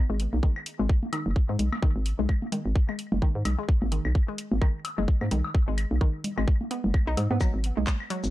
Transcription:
0.10 0.27 G#1 medium
0.10 0.13 G#3 medium
0.20 open hi-hat medium
0.33 0.41 B1 medium
0.33 high conga medium
0.43 0.47 D#3 medium
0.43 kick loud
0.56 claves medium
0.66 open hi-hat medium
0.79 0.87 G#1 loud
0.79 0.82 G#3 medium
0.89 kick loud
1.03 high conga medium
1.13 1.16 D#3 medium
1.13 open hi-hat medium
1.13 claves medium
1.13 high woodblock medium
1.26 1.34 F#1 loud
1.36 kick loud
1.49 1.57 G#2 medium
1.49 1.52 G#3 medium
1.59 1.70 B1 medium
1.59 open hi-hat medium
1.59 low conga loud
1.73 high conga medium
1.73 claves medium
1.73 high woodblock medium
1.82 1.86 D#3 medium
1.82 kick loud
1.96 2.13 G#1 medium
2.06 open hi-hat loud
2.19 2.27 B1 medium
2.19 2.22 G#3 medium
2.29 kick loud
2.29 claves medium
2.42 high conga medium
2.52 2.56 D#3 medium
2.52 open hi-hat medium
2.52 low conga medium
2.66 2.73 G#1 medium
2.76 kick loud
2.89 2.92 G#3 medium
2.89 claves medium
2.99 open hi-hat medium
3.12 3.20 F#1 loud
3.12 high conga medium
3.12 low conga medium
3.22 3.26 D#3 medium
3.22 kick loud
3.35 3.43 G#2 medium
3.45 3.56 B1 medium
3.45 open hi-hat medium
3.45 low conga loud
3.45 claves medium
3.45 high woodblock medium
3.59 3.61 G#3 medium
3.69 kick loud
3.82 3.99 G#1 loud
3.82 high conga medium
3.92 3.96 D#3 medium
3.92 open hi-hat medium
4.05 4.13 B1 medium
4.05 claves medium
4.15 kick loud
4.28 4.31 G#3 medium
4.38 open hi-hat loud
4.52 4.59 G#1 loud
4.52 high conga medium
4.61 4.65 D#3 medium
4.61 kick loud
4.61 claves medium
4.85 open hi-hat loud
4.85 high woodblock medium
4.98 5.06 F#1 loud
4.98 5.01 G#3 medium
5.08 kick loud
5.21 5.29 G#2 medium
5.21 high conga medium
5.21 claves medium
5.31 5.42 B1 medium
5.31 5.35 D#3 medium
5.31 open hi-hat medium
5.31 low conga medium
5.44 high woodblock medium
5.55 kick loud
5.68 5.85 G#1 medium
5.68 5.71 G#3 medium
5.78 open hi-hat medium
5.78 claves medium
5.91 5.99 B1 medium
5.91 high conga medium
6.01 6.05 D#3 medium
6.01 kick loud
6.24 open hi-hat medium
6.24 low conga medium
6.38 6.45 G#1 loud
6.38 6.40 G#3 medium
6.38 claves medium
6.48 kick loud
6.61 high conga medium
6.71 6.75 B3 medium
6.71 open hi-hat medium
6.84 6.92 F#1 loud
6.84 low conga medium
6.94 kick loud
6.94 claves medium
7.07 7.15 B1 medium
7.07 7.09 D#4 loud
7.17 7.28 G#2 medium
7.17 open hi-hat medium
7.17 low conga medium
7.17 high woodblock medium
7.31 7.38 G#2 medium
7.31 7.35 B3 medium
7.31 high conga medium
7.41 7.44 F#3 loud
7.41 kick loud
7.41 claves medium
7.41 shaker medium
7.54 7.72 G#1 loud
7.64 open hi-hat medium
7.77 7.85 B1 medium
7.77 7.80 G#3 medium
7.77 high conga medium
7.87 kick loud
7.87 clap medium
7.87 shaker medium
8.00 claves medium
8.10 8.14 F#3 loud
8.10 open hi-hat medium
8.24 8.30 G#1 loud
8.24 shaker soft

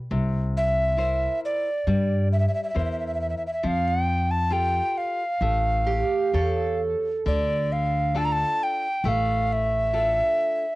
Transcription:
0.11 1.25 C2 medium
0.11 0.96 C3 medium
0.57 1.40 E5 medium
0.97 1.68 E4 soft
0.97 1.69 A#4 soft
0.97 1.69 C5 medium
1.45 2.28 D5 medium
1.87 2.44 G2 medium
1.87 2.73 G3 medium
2.32 2.39 E5 medium
2.39 2.46 E5 medium
2.48 2.54 E5 medium
2.54 2.61 E5 medium
2.64 2.69 E5 medium
2.70 2.76 E5 medium
2.74 3.33 E2 medium
2.74 3.45 E4 soft
2.74 3.45 A#4 soft
2.74 3.46 C5 medium
2.74 2.84 E5 medium
2.85 2.91 E5 medium
2.92 2.98 E5 medium
2.99 3.05 E5 medium
3.07 3.13 E5 medium
3.14 3.20 E5 medium
3.21 3.27 E5 medium
3.30 3.35 E5 medium
3.37 3.43 E5 medium
3.47 3.51 E5 medium
3.53 3.69 E5 medium
3.63 4.79 F2 medium
3.63 4.49 F3 medium
3.63 3.89 F5 medium
3.88 4.32 G5 medium
4.31 4.54 A5 medium
4.50 5.23 F4 soft
4.50 5.23 G4 soft
4.50 5.23 A4 medium
4.50 4.99 G5 medium
4.98 6.81 F5 medium
5.41 6.01 A1 medium
5.41 6.31 A3 medium
5.87 6.34 G4 medium
6.33 6.93 E2 medium
6.33 7.07 G4 soft
6.33 7.07 A4 soft
6.33 7.08 C#5 soft
7.26 8.42 D2 medium
7.26 8.13 D3 medium
7.26 7.74 D5 medium
7.72 8.19 F5 medium
8.15 8.87 D4 soft
8.15 8.87 F4 soft
8.15 8.87 A4 medium
8.15 8.27 A5 loud
8.25 8.34 A#5 medium
8.32 8.65 A5 loud
8.63 9.10 G5 medium
9.04 10.19 A1 medium
9.04 9.91 A3 medium
9.08 9.54 F5 medium
9.53 10.75 E5 loud
9.93 10.64 D4 soft
9.93 10.64 F4 soft
9.93 10.64 A4 medium

